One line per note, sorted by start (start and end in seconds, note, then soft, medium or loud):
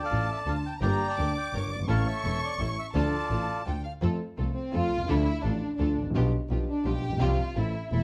0.00 0.52 A4 medium
0.00 0.52 D5 medium
0.00 0.78 A5 medium
0.05 0.28 F5 medium
0.10 0.26 A1 medium
0.10 0.26 A2 soft
0.10 0.25 D4 soft
0.10 0.25 F4 soft
0.10 0.25 A4 soft
0.32 0.39 E5 medium
0.46 0.61 D2 medium
0.46 0.61 D3 medium
0.46 0.61 D4 soft
0.46 0.61 F4 soft
0.46 0.61 A4 soft
0.46 0.56 F5 medium
0.66 0.74 G5 loud
0.81 0.96 G1 medium
0.81 0.97 G1 medium
0.81 0.97 G2 medium
0.81 0.97 D3 medium
0.81 0.97 G3 medium
0.81 0.98 A#3 medium
0.81 0.96 D4 medium
0.81 0.96 G4 medium
0.81 0.98 G4 medium
0.81 0.97 A#4 medium
0.81 1.07 D5 medium
0.81 1.31 G5 medium
0.81 1.17 A#5 medium
0.81 1.07 A#5 medium
1.08 1.58 D5 medium
1.08 1.34 A5 loud
1.16 1.32 D2 medium
1.16 1.32 D3 soft
1.16 1.32 D4 soft
1.16 1.32 G4 soft
1.16 1.32 A#4 soft
1.16 1.88 D6 medium
1.37 1.54 G5 medium
1.52 1.67 G1 medium
1.52 1.68 G1 medium
1.52 1.68 G2 medium
1.52 1.68 D4 soft
1.52 1.68 G4 soft
1.52 1.68 A#4 medium
1.52 1.70 C#5 medium
1.69 1.87 G1 medium
1.69 1.79 D5 medium
1.75 1.79 F#1 medium
1.80 1.84 G1 medium
1.80 1.88 G#1 medium
1.87 2.03 A1 medium
1.87 2.03 A2 medium
1.87 2.03 E3 medium
1.87 2.03 A3 medium
1.87 2.03 C#4 medium
1.87 2.03 E4 medium
1.87 2.05 A4 medium
1.87 2.03 A4 medium
1.87 2.04 C#5 medium
1.87 2.07 F5 loud
1.87 2.90 C#6 loud
2.06 2.55 A4 medium
2.06 2.55 C#5 medium
2.06 2.40 E5 medium
2.24 2.39 E1 medium
2.24 2.39 E2 medium
2.24 2.38 C#4 soft
2.24 2.39 E4 soft
2.24 2.39 A4 medium
2.45 2.59 D5 medium
2.58 2.73 A1 medium
2.58 2.74 A1 medium
2.58 2.74 A2 medium
2.58 2.74 C#4 soft
2.58 2.74 E4 soft
2.58 2.74 A4 medium
2.58 2.76 C#5 medium
2.79 2.86 E5 medium
2.94 3.09 D2 medium
2.94 3.10 D2 medium
2.94 3.10 D3 medium
2.94 3.10 F3 medium
2.94 3.09 A3 medium
2.94 3.09 D4 medium
2.94 3.10 D4 medium
2.94 3.62 F4 medium
2.94 3.10 F4 medium
2.94 3.61 A4 medium
2.94 3.10 A4 medium
2.94 3.62 D5 medium
2.94 3.66 A5 medium
3.30 3.45 A1 medium
3.30 3.45 A2 medium
3.30 3.45 D4 soft
3.30 3.45 F4 soft
3.30 3.45 A4 medium
3.66 3.81 D2 soft
3.66 3.81 D2 medium
3.66 3.81 D3 medium
3.66 3.81 D4 soft
3.66 3.81 F4 soft
3.66 3.81 A4 soft
3.66 3.84 G5 medium
3.83 3.91 F5 medium
4.01 4.16 F2 medium
4.01 4.17 F2 medium
4.01 4.17 F3 medium
4.01 4.17 A3 medium
4.01 4.17 C4 medium
4.01 4.17 F4 medium
4.01 4.17 A4 medium
4.37 4.52 C2 medium
4.37 4.53 C2 medium
4.37 4.53 C3 soft
4.37 4.53 F3 soft
4.37 4.53 A3 soft
4.37 4.52 C4 soft
4.37 4.53 C4 soft
4.37 4.52 F4 soft
4.37 4.52 A4 soft
4.37 4.53 A4 soft
4.54 4.71 C4 medium
4.73 4.88 F2 medium
4.73 4.88 F3 medium
4.73 4.88 A3 soft
4.73 4.88 C4 medium
4.73 4.88 C4 soft
4.73 5.08 F4 loud
4.73 4.88 F4 soft
4.73 4.88 A4 medium
4.91 5.08 C2 medium
4.96 5.00 B1 soft
5.01 5.04 C2 medium
5.01 5.08 C#2 medium
5.08 5.23 D2 loud
5.08 5.23 D2 medium
5.08 5.23 D3 medium
5.08 5.23 F3 medium
5.08 5.23 A3 medium
5.08 5.23 D4 medium
5.08 5.24 D4 medium
5.08 5.44 E4 loud
5.08 5.23 F4 medium
5.08 5.23 A4 medium
5.08 5.24 A4 medium
5.43 5.59 A1 medium
5.43 5.59 A2 medium
5.43 5.59 F3 soft
5.43 5.59 A3 soft
5.43 5.76 D4 medium
5.43 5.58 D4 soft
5.43 5.59 D4 soft
5.43 5.58 F4 soft
5.43 5.59 A4 medium
5.43 5.59 A4 soft
5.77 5.94 D2 medium
5.77 5.94 D3 medium
5.77 5.94 F3 soft
5.77 5.94 A3 soft
5.77 6.03 D4 medium
5.77 5.94 D4 medium
5.77 5.94 D4 soft
5.77 5.94 F4 soft
5.77 5.94 A4 medium
5.97 6.14 A1 medium
6.01 6.06 G#1 medium
6.05 6.10 A1 medium
6.10 6.15 A#1 medium
6.10 6.29 B1 medium
6.15 6.30 B1 medium
6.15 6.30 B2 medium
6.15 6.30 F3 medium
6.15 6.29 B3 medium
6.15 6.30 B3 medium
6.15 6.30 D4 medium
6.15 6.29 F4 medium
6.15 6.30 G4 medium
6.49 6.64 B1 medium
6.49 6.65 B1 medium
6.49 6.65 B2 medium
6.49 6.65 F3 medium
6.49 6.65 B3 soft
6.49 6.65 D4 soft
6.49 6.65 F4 soft
6.49 6.65 G4 medium
6.70 6.85 D4 medium
6.85 7.00 B1 medium
6.85 7.00 B2 medium
6.85 7.00 F3 soft
6.85 7.00 B3 soft
6.85 7.00 D4 soft
6.85 7.00 F4 soft
6.85 7.00 G4 medium
6.85 7.22 G4 medium
7.02 7.19 A#1 medium
7.08 7.12 A1 medium
7.12 7.17 A#1 medium
7.17 7.21 B1 medium
7.17 7.35 C2 medium
7.17 7.35 C3 medium
7.17 7.35 F3 medium
7.17 7.35 G3 medium
7.17 7.35 C4 medium
7.17 7.35 F4 medium
7.17 7.35 G4 loud
7.17 7.35 G4 medium
7.23 7.58 F4 medium
7.55 7.71 A1 medium
7.55 7.71 A2 soft
7.55 7.71 E3 soft
7.55 7.71 A3 soft
7.55 7.71 C4 soft
7.55 7.71 E4 soft
7.55 7.91 E4 medium
7.55 7.71 A4 soft
7.55 7.71 A4 medium
7.92 8.03 E1 medium
7.92 8.03 E2 medium
7.92 8.03 E3 soft
7.92 8.03 A3 soft
7.92 8.03 C4 soft
7.92 8.03 E4 medium
7.92 8.03 E4 soft
7.92 8.03 A4 medium